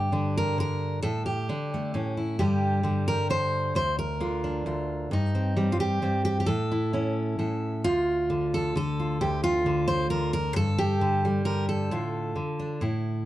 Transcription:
0.00 1.01 G2 medium
0.00 0.11 D3 medium
0.00 0.12 D4 soft
0.00 0.35 G4 loud
0.12 0.57 D3 medium
0.12 1.01 D4 soft
0.37 0.59 A#4 medium
0.58 1.01 D3 medium
0.58 1.02 A#4 loud
1.02 1.49 A2 medium
1.02 1.25 A4 medium
1.26 2.17 G4 medium
1.49 1.95 D3 medium
1.49 1.92 D4 soft
1.74 1.93 A3 soft
1.94 2.40 A2 medium
1.94 2.37 C#4 soft
2.17 2.40 E4 soft
2.39 3.73 G2 medium
2.39 2.82 D3 soft
2.39 2.83 G3 soft
2.39 3.53 G4 medium
2.83 3.29 D3 medium
2.83 3.76 G3 soft
3.08 3.30 A#4 medium
3.30 3.73 D3 medium
3.30 3.75 C5 loud
3.75 4.65 D2 medium
3.75 3.98 C5 medium
3.99 5.12 A#4 medium
4.20 5.11 D3 medium
4.20 4.65 F4 soft
4.44 5.09 D4 soft
4.66 5.11 D2 medium
4.66 5.09 F4 soft
5.11 6.01 G2 medium
5.11 5.72 D#4 medium
5.35 5.56 C4 soft
5.57 6.45 G3 medium
5.57 6.01 C4 soft
5.72 5.80 F4 medium
5.80 6.24 G4 medium
6.02 6.45 G2 medium
6.02 6.45 C4 soft
6.25 6.39 G4 medium
6.40 6.47 G4 medium
6.46 7.37 A2 medium
6.46 7.38 A4 medium
6.71 6.93 E4 soft
6.93 7.82 C#4 medium
6.93 7.82 E4 soft
7.39 7.84 A2 medium
7.39 7.82 A4 soft
7.84 9.20 D2 medium
7.84 8.75 F4 loud
8.30 8.74 D3 medium
8.54 8.76 A4 medium
8.75 9.65 D3 medium
8.75 9.21 A4 medium
9.00 9.19 F4 soft
9.21 10.56 D2 medium
9.21 9.43 G4 medium
9.44 10.34 F4 medium
9.66 10.10 D3 medium
9.88 10.10 C5 medium
10.10 11.00 D3 medium
10.10 10.32 A#4 medium
10.33 10.56 A#4 medium
10.56 11.89 G2 medium
10.56 11.24 A4 loud
10.78 11.92 G4 medium
11.01 11.45 D3 medium
11.25 11.92 G3 soft
11.45 12.34 D3 medium
11.45 11.68 A#4 medium
11.69 12.82 A4 medium
11.91 12.37 A2 medium
11.91 12.80 F4 medium
12.36 12.82 D3 medium
12.59 12.80 D4 soft
12.81 13.25 A2 medium
12.81 13.25 E4 soft

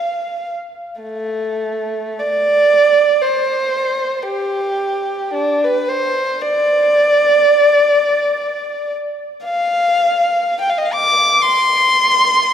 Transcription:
0.00 0.50 F5 medium
1.01 2.17 A3 medium
2.19 3.22 D5 medium
3.21 4.24 C5 medium
4.23 5.35 G4 medium
5.34 5.63 D4 medium
5.64 5.91 B4 medium
5.88 6.41 C5 medium
6.42 8.92 D5 medium
9.44 10.56 F5 medium
10.61 10.69 G5 medium
10.70 10.77 F5 medium
10.78 10.86 D#5 medium
10.85 10.93 F5 medium
10.94 11.44 D6 medium
11.42 12.53 C6 medium

